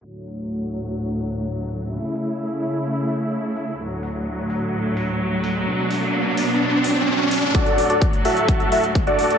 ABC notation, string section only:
X:1
M:4/4
L:1/8
Q:1/4=128
K:D
V:1 name="String section" clef=bass
[D,,A,,F,]8 | [C,A,E]8 | [D,,A,,F,]8 | [B,,D]8 |
[D,,A,,F,]8 |]